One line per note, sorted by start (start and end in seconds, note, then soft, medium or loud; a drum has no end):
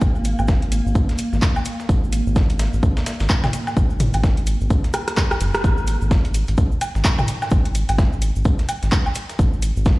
0.00 0.34 G#1 loud
0.00 5.65 A#3 medium
0.00 kick loud
0.00 tambourine medium
0.00 shaker medium
0.15 shaker soft
0.25 closed hi-hat medium
0.25 tambourine medium
0.25 shaker medium
0.39 0.81 G#1 loud
0.39 low woodblock soft
0.39 shaker soft
0.48 kick loud
0.48 snare loud
0.48 tambourine medium
0.48 shaker soft
0.62 closed hi-hat soft
0.62 shaker soft
0.72 closed hi-hat medium
0.72 tambourine medium
0.72 shaker medium
0.86 0.93 G#1 medium
0.86 shaker soft
0.95 1.06 C#2 loud
0.95 kick loud
0.95 tambourine medium
0.95 shaker soft
1.09 snare soft
1.09 closed hi-hat soft
1.09 shaker soft
1.18 closed hi-hat medium
1.18 tambourine medium
1.18 shaker medium
1.33 1.40 G#1 medium
1.33 snare soft
1.33 shaker soft
1.42 kick loud
1.42 snare loud
1.42 clap medium
1.42 tambourine medium
1.42 shaker medium
1.56 low woodblock medium
1.56 shaker soft
1.65 closed hi-hat medium
1.65 tambourine medium
1.65 shaker medium
1.80 snare medium
1.80 shaker soft
1.89 2.22 G#1 loud
1.89 kick loud
1.89 tambourine medium
1.89 shaker soft
2.04 shaker soft
2.13 closed hi-hat medium
2.13 tambourine medium
2.13 shaker medium
2.26 2.68 G#1 loud
2.26 shaker soft
2.36 kick loud
2.36 snare loud
2.36 tambourine medium
2.36 shaker medium
2.49 closed hi-hat soft
2.49 shaker soft
2.59 snare loud
2.59 closed hi-hat medium
2.59 tambourine medium
2.59 shaker medium
2.73 2.81 G#1 medium
2.73 shaker soft
2.83 2.94 C#2 loud
2.83 kick loud
2.83 tambourine medium
2.83 shaker soft
2.97 snare loud
2.97 tambourine medium
2.97 shaker soft
3.06 snare loud
3.06 closed hi-hat medium
3.06 tambourine medium
3.06 shaker medium
3.20 3.28 G#1 medium
3.20 snare loud
3.20 tambourine medium
3.20 shaker soft
3.29 kick loud
3.29 snare loud
3.29 clap loud
3.29 shaker medium
3.44 snare loud
3.44 mid tom medium
3.44 tambourine medium
3.44 low woodblock medium
3.44 shaker soft
3.53 closed hi-hat medium
3.53 tambourine medium
3.53 shaker medium
3.67 snare medium
3.67 low woodblock medium
3.67 shaker soft
3.77 4.09 G#1 loud
3.77 kick loud
3.77 tambourine medium
3.77 shaker medium
3.90 shaker soft
4.00 closed hi-hat medium
4.00 mid tom medium
4.00 tambourine medium
4.00 shaker medium
4.13 4.56 G#1 loud
4.13 closed hi-hat medium
4.13 low woodblock soft
4.13 shaker soft
4.24 kick loud
4.24 snare loud
4.24 tambourine medium
4.24 shaker soft
4.37 closed hi-hat soft
4.37 shaker soft
4.47 closed hi-hat medium
4.47 tambourine medium
4.47 shaker medium
4.61 4.68 G#1 medium
4.61 shaker soft
4.70 4.81 C#2 loud
4.70 kick loud
4.70 tambourine medium
4.70 shaker soft
4.84 snare soft
4.84 closed hi-hat soft
4.84 shaker soft
4.93 cross-stick medium
4.93 closed hi-hat medium
4.93 tambourine medium
4.93 low woodblock medium
4.93 shaker medium
5.08 cross-stick medium
5.08 snare soft
5.08 closed hi-hat medium
5.08 shaker soft
5.17 kick loud
5.17 cross-stick medium
5.17 snare loud
5.17 clap loud
5.17 tambourine medium
5.17 shaker soft
5.31 cross-stick medium
5.31 closed hi-hat soft
5.31 low woodblock medium
5.31 shaker soft
5.40 5.51 F#1 loud
5.40 closed hi-hat medium
5.40 tambourine medium
5.40 shaker medium
5.54 cross-stick medium
5.54 closed hi-hat soft
5.54 shaker soft
5.64 5.97 G#1 loud
5.64 kick loud
5.64 tambourine medium
5.64 shaker medium
5.78 shaker soft
5.87 closed hi-hat medium
5.87 tambourine medium
5.87 shaker medium
6.01 6.43 G#1 loud
6.01 shaker soft
6.11 kick loud
6.11 snare loud
6.11 tambourine medium
6.11 shaker soft
6.25 closed hi-hat soft
6.25 shaker soft
6.34 closed hi-hat medium
6.34 tambourine medium
6.34 shaker medium
6.47 6.56 G#1 medium
6.47 closed hi-hat soft
6.47 shaker soft
6.58 6.69 C#2 loud
6.58 kick loud
6.58 tambourine medium
6.58 shaker medium
6.72 shaker soft
6.81 closed hi-hat medium
6.81 tambourine medium
6.81 low woodblock medium
6.81 shaker medium
6.95 7.03 G#1 medium
6.95 snare medium
6.95 shaker soft
7.05 kick loud
7.05 snare loud
7.05 clap loud
7.05 tambourine medium
7.05 shaker medium
7.19 snare medium
7.19 mid tom medium
7.19 low woodblock medium
7.19 shaker soft
7.28 closed hi-hat medium
7.28 tambourine medium
7.28 shaker medium
7.42 snare medium
7.42 low woodblock medium
7.42 shaker soft
7.50 7.84 G#1 loud
7.50 kick loud
7.50 tambourine medium
7.50 shaker soft
7.65 closed hi-hat soft
7.65 shaker soft
7.75 closed hi-hat loud
7.75 tambourine medium
7.75 shaker medium
7.89 8.31 G#1 loud
7.89 closed hi-hat medium
7.89 low woodblock medium
7.89 shaker soft
7.98 kick loud
7.98 snare loud
7.98 tambourine medium
7.98 shaker medium
8.13 shaker soft
8.22 closed hi-hat loud
8.22 tambourine medium
8.22 shaker medium
8.36 8.43 G#1 medium
8.36 shaker soft
8.45 8.56 C#2 loud
8.45 kick loud
8.45 tambourine medium
8.45 shaker soft
8.58 snare soft
8.58 closed hi-hat soft
8.58 shaker soft
8.69 closed hi-hat loud
8.69 tambourine medium
8.69 low woodblock medium
8.69 shaker loud
8.83 8.90 G#1 medium
8.83 snare soft
8.83 closed hi-hat soft
8.83 shaker soft
8.91 kick loud
8.91 snare loud
8.91 clap loud
8.91 tambourine medium
8.91 shaker medium
9.06 low woodblock medium
9.06 shaker soft
9.15 closed hi-hat loud
9.15 tambourine medium
9.15 shaker medium
9.29 snare medium
9.29 closed hi-hat soft
9.29 shaker soft
9.39 9.72 G#1 medium
9.39 kick loud
9.39 tambourine medium
9.39 shaker medium
9.53 shaker soft
9.62 closed hi-hat loud
9.62 tambourine medium
9.62 shaker loud
9.76 9.99 G#1 loud
9.76 shaker soft
9.85 kick loud
9.85 snare loud
9.85 tambourine medium
9.85 shaker medium